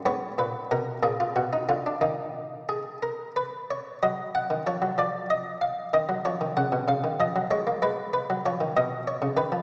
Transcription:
<<
  \new Staff \with { instrumentName = "Harpsichord" } { \time 6/8 \key ees \minor \tempo 4. = 63 des''8 ces''8 bes'8 aes'16 f'16 ges'16 ees'16 f'16 d'16 | ees'4 aes'8 bes'8 ces''8 des''8 | ees''8 ges''8 des''8 d''8 ees''8 f''8 | ees''8 des''8 ges''8 f''8 ees''8 des''8 |
ces''8 ces''8 des''8 ees''8 des''8 ces''8 | }
  \new Staff \with { instrumentName = "Harpsichord" } { \clef bass \time 6/8 \key ees \minor << { ces'4. bes4. | r2. | r2. | r2. |
r2. | } \\ { aes,8 bes,8 ces8 bes,8 ces8 d8 | <ees bes>4. r4. | ges8. ees16 f16 ges16 f4. | ees16 ges16 f16 ees16 des16 ces16 des16 ees16 f16 ges16 aes16 bes16 |
aes8. ges16 f16 ees16 ces8. des16 ees16 f16 | } >> }
>>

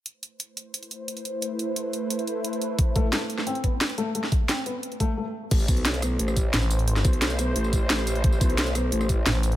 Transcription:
<<
  \new Staff \with { instrumentName = "Analog synth pad" } { \time 4/4 \key a \minor \tempo 4 = 176 <a e' b' c''>1~ | <a e' b' c''>1~ | <a e' b' c''>1~ | <a e' b' c''>2. r4 |
<a e' b' c''>1~ | <a e' b' c''>1~ | <a e' b' c''>1 | }
  \new Staff \with { instrumentName = "Felt piano" } { \time 4/4 \key a \minor r1 | r1 | r8 a8 a8 r8 c'8 b8 r8 a8 | a8 r8 c'8 b8 r8 a8 a8 r8 |
r1 | r1 | r1 | }
  \new Staff \with { instrumentName = "FM bass" } { \clef bass \time 4/4 \key a \minor r1 | r1 | r1 | r1 |
r2. a,,4~ | a,,8 r2. r8 | r2. a,,4 | }
  \new Staff \with { instrumentName = "Wobble bass" } { \clef bass \time 4/4 \key a \minor r1 | r1 | r1 | r1 |
a,,8 b,,4. a,,4 r4 | r8 b,,4. a,,4 a,,4 | a,,8 b,,4. a,,4 r4 | }
  \new DrumStaff \with { instrumentName = "Drums" } \drummode { \time 4/4 hh8 hh8 hh8 hh8 hh16 hh16 hh8 hh16 hh16 hh8 | hh8 hh8 hh8 hh8 hh16 hh16 hh8 hh16 hh16 hh8 | <hh bd>8 <hh bd>8 <hh sn>8 hh16 sn16 hh16 hh16 <hh bd>8 <hh sn>16 hh16 hh8 | hh16 sn16 <hh bd>8 <hh sn>8 hh8 hh16 hh16 <hh bd>8 r4 |
<cymc hh bd>16 tamb16 <hh bd tamb>16 hh16 <hh sn>16 <hh tamb>16 <hh ss tamb>8 hh16 <ss tamb>16 <hh bd tamb>8 <hh sn>16 tamb16 <hh tamb>16 hh16 | hh16 <sn tamb>16 <hh bd tamb>16 hh16 <hh sn>16 <hh tamb>16 <hh tamb>8 hh16 tamb16 <hh bd tamb>8 <hh sn>16 tamb16 <hh tamb>16 hh16 | <hh bd>16 tamb16 <hh bd tamb>16 hh16 <hh sn>16 <hh tamb>16 <hh ss tamb>8 hh16 <ss tamb>16 <hh bd tamb>8 <hh sn>16 tamb16 <hh tamb>16 hh16 | }
>>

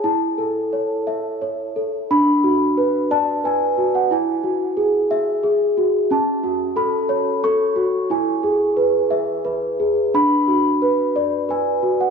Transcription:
\new Staff \with { instrumentName = "Celesta" } { \time 3/4 \key b \dorian \tempo 4 = 89 << { a''2~ a''8 r8 | b''4. a''8 gis''8. fis''16 | gis''2~ gis''8 r8 | a''4 b''4 cis'''4 |
gis''2 r4 | b''2 gis''8. fis''16 | } \\ { e'8 a'8 cis''8 e''8 cis''8 a'8 | d'8 fis'8 b'8 d''8 b'8 fis'8 | e'8 fis'8 gis'8 e''8 gis'8 fis'8 | cis'8 fis'8 a'8 cis''8 a'8 fis'8 |
e'8 gis'8 b'8 e''8 b'8 gis'8 | d'8 fis'8 b'8 d''8 b'8 fis'8 | } >> }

